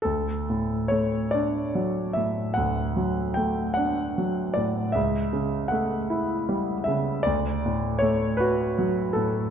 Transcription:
<<
  \new Staff \with { instrumentName = "Grand piano" } { \time 12/8 \key d \major \tempo 4. = 51 a'4 cis''8 d''4 e''8 fis''4 g''8 fis''4 d''8 | e''4 fis''4. e''8 d''4 cis''8 b'4 a'8 | }
  \new Staff \with { instrumentName = "Grand piano" } { \clef bass \time 12/8 \key d \major d,8 a,8 a8 d'8 fis8 a,8 d,8 fis8 a8 d'8 fis8 a,8 | cis,8 cis8 a8 e'8 g8 cis8 d,8 a,8 a8 fis'8 fis8 a,8 | }
>>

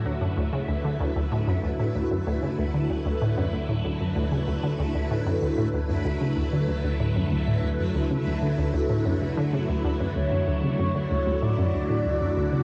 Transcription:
<<
  \new Staff \with { instrumentName = "Analog synth lead" } { \time 4/4 \key d \major \tempo 4 = 95 r1 | r1 | r1 | r1 |
cis''2 d''2 | }
  \new Staff \with { instrumentName = "String machine" } { \time 4/4 \key d \major << { b'1~ | b'1~ | b'1~ | b'1 |
fis'1 | } \\ { <d fis a e'>1~ | <d fis a e'>1~ | <d fis a e'>1~ | <d fis a e'>1~ |
<d fis a e'>1 | } >> }
  \new Staff \with { instrumentName = "Synth arpeggio sound" } { \clef bass \time 4/4 \key d \major d,16 fis,16 d,16 cis16 d,16 d16 d,16 d,16 a,16 fis,16 d,16 a,16 d,16 fis,16 d,16 cis16 | d,16 d16 d,16 d,16 a,16 fis,16 d,16 a,16 d,16 fis,16 d,16 cis16 d,16 d16 d,16 d,16 | a,16 fis,16 d,16 a,16 d,16 fis,16 d,16 cis16 d,16 d16 d,16 d,16 a,16 fis,16 d,16 a,16 | d,16 fis,16 d,16 cis16 d,16 d16 d,16 d,16 a,16 fis,16 cis16 d16 cis16 d,16 d,16 fis,16 |
d,16 fis,16 d,16 cis16 fis,16 d16 d,16 d,16 a,16 fis,16 d,16 a,16 d,16 fis,16 d,16 cis16 | }
  \new Staff \with { instrumentName = "Analog synth bass" } { \clef bass \time 4/4 \key d \major d,1~ | d,1~ | d,1~ | d,1 |
d,1 | }
>>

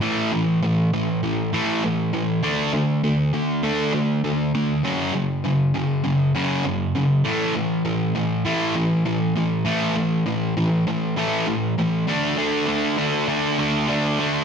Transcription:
\new Staff \with { instrumentName = "Distorted electric guitar" } { \clef bass \time 4/4 \key a \major \tempo 4 = 100 <a, e a>8 <a, e>8 <a, e>8 <a, e>8 <a, e>8 <a, e a>8 <a, e>8 <a, e>8 | <d a d'>8 <d a>8 <d a>8 <d a>8 <d a d'>8 <d a>8 <d a>8 <d a>8 | <fis, cis fis>8 <fis, cis>8 <fis, cis>8 <fis, cis>8 <fis, cis>8 <fis, cis fis>8 <fis, cis>8 <fis, cis>8 | <a, e a>8 <a, e>8 <a, e>8 <a, e>8 <a, e a>8 <a, e>8 <a, e>8 <a, e>8 |
<a, e a>8 <a, e>8 <a, e>8 <a, e>8 <a, e>8 <a, e a>8 <a, e>8 <a, e>8 | <d a d'>8 <d a d'>8 <d a d'>8 <d a d'>8 <d a d'>8 <d a d'>8 <d a d'>8 <d a d'>8 | }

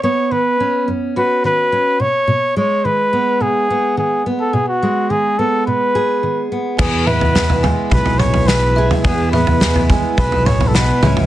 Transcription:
<<
  \new Staff \with { instrumentName = "Kalimba" } { \time 4/4 \key e \major \tempo 4 = 106 r1 | r1 | r1 | b'8 e''8 b'8 gis''8 b'8 b''8 b'8 e''8 |
b'8 e''8 b'8 gis''8 b'8 b''8 b'8 e''8 | }
  \new Staff \with { instrumentName = "Trumpet" } { \time 4/4 \key e \major cis''8 b'4 r8 b'8 b'4 cis''8~ | cis''8 cis''8 b'4 gis'4 gis'8 r16 a'16 | gis'16 fis'8. gis'8 a'8 b'4. r8 | gis'8 b'4 r8 b'8 cis''8 b'8. r16 |
gis'8 b'4 r8 b'8 cis''16. a'32 b'8. r16 | }
  \new Staff \with { instrumentName = "Twelve-string acoustic guitar" } { \clef bass \time 4/4 \key e \major r1 | r1 | r1 | <e, b, e gis b e'>8 <e gis b e'>8 <e, b, e gis b e'>8 <e gis b e'>8 <e gis b e'>8 <e b e'>8 <e, b, e gis b e'>8 <e gis b e'>8 |
<e, b, e gis b e'>8 <e gis b e'>8 <e, b, e gis b e'>8 <e gis b e'>8 <e gis b e'>8 <e gis b e'>8 <e, b, e gis b e'>8 <gis cis' e'>8 | }
  \new Staff \with { instrumentName = "Steel-string acoustic guitar" } { \clef bass \time 4/4 \key e \major << { b4 cis'4 fis'4 cis'8 r8 | r8 gis4 b4 b4 b8~ | b8 gis4 b4 gis'4 b8 | b8 b4 gis2 gis'8 |
b8 b4 gis2 <e gis cis' e'>8 | } \\ { b,8 dis4 fis,4 dis4 b,8 | b,4 dis4 b,4 dis4 | b,4 dis4 b,4 dis4 | e,4 e4 b,4 e4 |
e,4 e4 b,8 a,8 b,8 cis8 | } >> }
  \new Staff \with { instrumentName = "Fingered electric bass" } { \clef bass \time 4/4 \key e \major r1 | r1 | r1 | e,2 b,,2 |
e,2 b,,4. cis,8 | }
  \new DrumStaff \with { instrumentName = "Drums" } \drummode { \time 4/4 r4 r4 r4 r4 | r4 r4 r4 r4 | r4 r4 r4 r4 | <cymc bd tomfh>8 toml16 tomfh16 <sn tomfh>16 tomfh16 tomfh8 <bd tomfh>16 tomfh16 <tomfh toml>16 <tomfh toml>16 sn8. tomfh16 |
<bd tomfh>8 toml16 tomfh16 <sn tomfh>16 tomfh16 <bd tomfh>8 <bd tomfh>16 tomfh16 <tomfh toml>16 <tomfh toml>16 sn8 toml16 tomfh16 | }
>>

